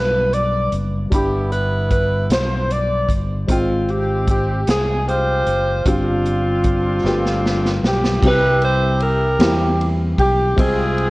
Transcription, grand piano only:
0.00 1.12 G2 medium
0.00 1.07 B3 soft
0.00 1.08 F4 soft
0.00 1.09 A4 medium
0.00 1.07 E5 soft
1.10 2.26 G2 soft
1.10 3.44 G3 soft
1.10 3.44 D4 soft
1.10 3.45 E4 soft
1.10 3.45 B5 medium
3.47 4.63 G#2 medium
3.47 5.80 G#3 medium
3.47 5.81 C4 soft
3.47 5.82 F4 soft
3.47 5.82 G5 medium
5.86 7.00 G2 soft
5.86 7.03 C4 soft
5.86 7.03 D4 soft
5.86 7.04 F4 soft
5.86 7.04 G4 medium
7.05 8.19 G2 medium
7.05 8.22 A3 medium
7.05 8.23 F4 medium
7.05 8.23 G4 medium
7.05 8.22 B4 medium
8.23 9.37 C3 medium
8.23 9.38 G3 medium
8.23 9.39 C4 medium
8.23 9.39 E4 medium
8.23 9.40 G4 medium
9.39 10.54 E3 medium
9.39 10.57 G3 medium
9.39 10.57 A#3 medium
9.39 10.55 C4 medium
9.39 10.58 E4 medium
9.39 10.58 G4 medium
10.57 11.10 C3 medium
10.57 11.10 G#3 medium
10.57 11.10 C4 medium
10.57 11.10 F4 medium
10.57 11.10 G#4 medium
10.57 11.10 C5 medium

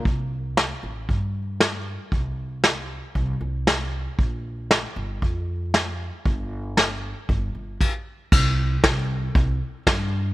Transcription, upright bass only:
0.05 0.70 C2 medium
0.83 1.05 A1 medium
1.09 1.96 G2 medium
2.12 2.99 C2 medium
3.15 3.37 C2 loud
3.41 4.06 C2 medium
4.19 4.84 A#1 medium
4.96 5.18 G1 medium
5.22 6.09 F2 medium
6.26 7.12 G1 medium
7.29 7.51 G1 medium
7.55 7.76 G1 medium
8.32 8.75 C2 loud
8.84 9.27 C2 loud
9.35 9.57 C2 loud
9.87 10.34 G2 loud

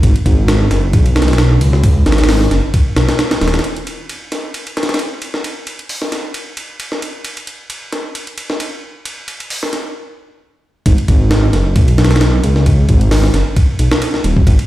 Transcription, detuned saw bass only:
0.03 0.13 G#1 medium
0.26 0.67 G#1 loud
0.71 0.95 F#1 loud
0.94 1.58 B1 loud
1.61 2.03 C#2 medium
2.06 2.48 G#1 loud
2.51 2.61 F#1 loud
2.96 3.06 B1 medium
3.41 3.60 D#1 medium
10.86 10.96 G#1 medium
11.08 11.50 G#1 loud
11.53 11.77 F#1 loud
11.76 12.40 B1 medium
12.44 12.85 C#2 medium
12.89 13.31 G#1 loud
13.34 13.44 F#1 loud
13.79 13.89 B1 medium
14.24 14.43 D#1 loud
14.47 14.56 G#1 loud

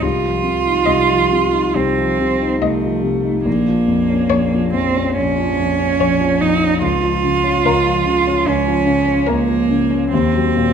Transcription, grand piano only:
0.02 0.85 C2 soft
0.24 0.58 F3 soft
0.44 0.79 C3 soft
0.66 1.01 D#4 soft
0.87 1.74 C2 soft
1.09 1.45 F3 soft
1.32 1.67 C3 soft
1.53 1.89 D#4 soft
1.75 2.60 C2 soft
1.98 2.33 F3 soft
2.20 2.54 C3 soft
2.41 2.75 D#4 soft
2.61 3.43 C2 soft
2.83 3.17 F3 soft
3.03 3.37 C3 soft
3.25 3.46 D#4 soft
3.45 4.28 A#1 medium
3.67 4.01 F3 soft
3.88 4.22 F2 soft
4.10 4.43 C#4 soft
4.30 5.16 A#1 medium
4.53 4.86 F3 soft
4.74 5.07 F2 soft
4.97 5.30 C#4 soft
5.18 5.98 A#1 soft
5.38 5.71 F3 soft
5.59 5.92 F2 soft
5.80 6.13 C#4 soft
6.00 6.80 A#1 soft
6.21 6.54 F3 soft
6.42 6.74 F2 soft
6.62 6.83 C#4 soft
6.81 7.64 C#2 soft
7.02 7.35 F3 soft
7.24 7.56 C#3 soft
7.44 7.76 C#4 soft
7.65 8.45 C#2 medium
7.86 8.18 F3 soft
8.05 8.38 C#3 soft
8.27 8.59 C#4 soft
8.46 9.27 C#2 medium
8.68 8.99 F3 soft
8.86 9.19 C#3 soft
9.06 9.39 C#4 soft
9.29 10.10 C#2 medium
9.48 9.82 F3 soft
9.70 10.04 C#3 soft
9.90 10.12 C#4 soft
10.13 10.73 D#2 medium
10.35 10.68 F#3 soft
10.57 10.73 A#2 soft

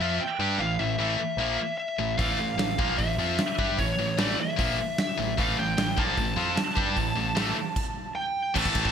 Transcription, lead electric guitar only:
0.00 0.22 E5 medium
0.21 0.59 G5 medium
0.59 0.80 F5 medium
0.79 1.77 E5 medium
1.78 2.19 E5 medium
2.17 3.00 F5 loud
2.98 3.78 E5 loud
3.79 4.19 C#5 medium
4.20 4.39 D5 medium
4.40 4.99 E5 loud
5.00 5.36 E5 medium
5.40 5.58 F5 loud
5.58 5.99 G5 loud
5.99 8.13 A5 loud
8.15 8.52 G5 loud
8.58 8.92 A5 loud

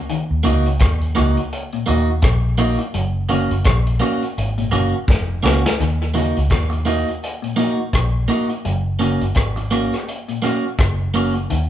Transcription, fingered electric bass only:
0.31 0.44 D#2 loud
0.46 0.79 C#2 medium
0.81 1.14 D#2 loud
1.18 1.36 C#2 medium
1.88 2.21 D#2 loud
2.23 2.75 A#1 medium
2.95 3.47 F#1 loud
3.51 3.65 F#1 medium
3.66 3.99 A#1 loud
4.38 4.71 G#1 medium
4.73 4.92 F#1 medium
5.09 5.42 F1 loud
5.45 5.63 C#2 loud
5.80 6.32 D#2 loud
6.37 6.51 C#2 medium
6.51 7.03 D#2 loud
7.94 8.27 A#1 medium
8.66 9.18 F#1 loud
9.22 9.35 F#1 medium
9.37 9.89 G#1 medium
10.79 11.46 F#1 loud
11.51 11.69 D#2 medium

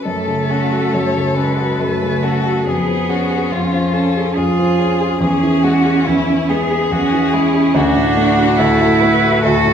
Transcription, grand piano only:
0.05 0.93 F#2 soft
0.27 0.63 C#3 soft
0.50 0.85 C#4 soft
0.72 1.07 F#4 soft
0.94 1.78 F#2 soft
1.16 1.50 C#3 soft
1.36 1.71 C#4 soft
1.57 1.93 F#4 soft
1.79 2.63 F#2 soft
2.02 2.36 C#3 soft
2.23 2.58 C#4 soft
2.45 2.67 F#4 soft
2.67 3.50 F2 soft
2.88 3.22 F3 soft
3.09 3.43 C#4 soft
3.31 3.65 G#4 soft
3.52 4.36 F2 soft
3.74 4.07 F3 soft
3.95 4.28 C#4 soft
4.17 4.50 G#4 soft
4.38 5.19 F2 soft
4.59 4.92 F3 soft
4.79 5.13 C#4 soft
5.01 5.21 G#4 soft
5.21 6.06 E2 medium
5.43 5.77 E3 soft
5.64 5.98 G#3 soft
5.85 6.19 G#4 soft
6.07 6.90 E2 soft
6.29 6.62 E3 soft
6.51 6.83 G#3 soft
6.71 7.04 G#4 soft
6.91 7.73 E2 soft
7.13 7.46 E3 soft
7.33 7.67 G#3 soft
7.54 7.75 G#4 soft
7.74 8.58 D2 medium
7.96 8.29 A2 soft
8.17 8.50 A3 soft
8.38 8.71 F#4 soft
8.59 9.43 D2 medium
8.81 9.14 A2 soft
9.02 9.35 A3 soft
9.24 9.57 F#4 soft
9.45 9.73 D2 medium
9.65 9.73 A2 soft

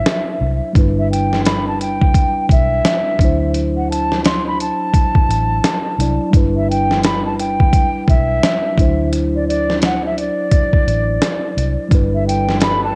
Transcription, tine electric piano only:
0.00 0.35 F#3 medium
0.00 0.36 D4 medium
0.00 0.37 E4 medium
0.00 0.38 C5 medium
0.73 3.14 G3 medium
0.73 3.15 D4 medium
0.73 3.16 E4 medium
0.79 3.17 B4 medium
3.19 5.94 F#3 medium
3.19 5.95 D4 medium
3.19 5.96 E4 medium
3.25 5.97 C5 medium
5.99 6.33 F#3 medium
5.99 6.32 D4 soft
5.99 6.34 E4 medium
5.99 6.35 D5 medium
6.31 8.72 G3 medium
6.31 8.73 D4 medium
6.35 8.74 E4 medium
6.35 8.75 B4 medium
8.75 11.51 F#3 medium
8.75 11.52 D4 medium
8.75 11.53 E4 medium
8.81 11.54 C5 medium
11.88 12.95 G3 medium
11.88 12.95 D4 medium
11.93 12.95 E4 medium
11.93 12.95 B4 medium

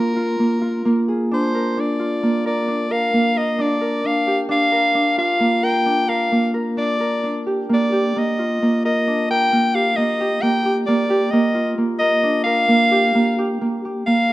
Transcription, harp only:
0.00 0.39 A#3 medium
0.00 1.31 D4 medium
0.00 0.16 F4 medium
0.00 0.15 G#4 medium
0.00 0.45 A#4 medium
0.16 0.61 F4 medium
0.39 0.85 A#3 medium
0.62 1.99 F4 medium
0.85 2.23 A#3 medium
1.08 3.36 G#4 medium
1.31 1.77 D4 medium
1.55 2.45 A#4 medium
1.77 2.67 D4 medium
2.00 4.52 F4 medium
2.23 3.13 A#3 medium
2.46 2.90 A#4 medium
2.68 3.58 D4 medium
2.91 3.35 A#4 medium
3.13 5.40 A#3 medium
3.36 3.81 A#4 medium
3.59 4.04 D4 medium
3.81 4.72 A#4 medium
4.04 4.48 D4 medium
4.27 6.62 G4 medium
4.49 4.94 D4 medium
4.72 5.62 A#4 medium
4.95 5.85 D4 medium
5.18 7.70 F4 medium
5.40 6.31 A#3 medium
5.63 6.08 A#4 medium
5.86 6.76 D4 medium
6.09 6.54 A#4 medium
6.32 7.69 A#3 medium
6.54 7.00 A#4 medium
6.77 7.23 D4 medium
7.00 8.85 A#4 medium
7.23 9.07 D4 medium
7.46 7.92 G4 medium
7.69 8.16 A#3 medium
7.92 9.74 G4 medium
8.16 8.62 A#3 medium
8.39 10.91 F4 medium
8.62 9.52 A#3 medium
8.85 9.30 A#4 medium
9.07 11.87 D4 medium
9.30 11.42 A#4 medium
9.52 9.97 A#3 medium
9.75 10.20 G4 medium
9.97 10.42 A#3 medium
10.20 10.65 G4 medium
10.42 10.88 A#3 medium
10.65 11.10 G4 medium
10.88 11.32 A#3 medium
11.10 12.91 G4 medium
11.33 11.77 A#3 medium
11.55 14.07 F4 medium
11.78 12.68 A#3 medium
12.01 12.45 A#4 medium
12.23 14.33 D4 medium
12.46 14.30 A#4 medium
12.68 13.15 A#3 medium
12.91 13.38 G4 medium
13.15 13.61 A#3 medium
13.38 13.84 G4 medium
13.61 14.07 A#3 medium
13.85 14.33 G4 medium
14.07 14.33 A#3 medium

